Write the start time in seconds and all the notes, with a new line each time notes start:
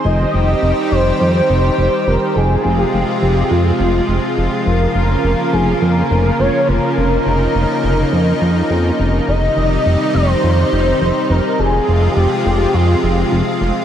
0.04 F1 D#3 G3 C4 G4 D#5
0.34 F1
0.62 F1
0.91 F1 C5
1.20 F2
1.49 F1
1.78 F1
2.07 F1 A#4
2.35 F1 C3 F3 G#3 F4 G#4
2.65 F1
2.79 G4
2.93 F1
3.22 F1 G4
3.51 F2 F4
3.80 F1
4.08 F1
4.37 F1
4.66 F1 C#3 A#3 A#4
4.95 F1
5.24 F1
5.52 F1 G#4
5.81 F2 A#4
6.11 F1
6.25 A#4
6.39 F1 C#5
6.68 F1 A#4
6.97 F1 D#4
7.26 F1
7.55 F1
7.84 F1
8.13 F2
8.41 F2
8.70 F2
8.99 F1
9.28 F1 C3 D#3 G3 D#4 D#5
9.57 F1
9.86 F1
10.14 F1 C5
10.43 F2
10.72 F1
11.01 F1
11.30 F1 A#4
11.58 F1 C3 F3 G#3 F4 G#4
11.88 F1
12.02 G4
12.17 F1
12.45 F1 G4
12.74 F2 F4
13.03 F1
13.32 F1
13.61 F1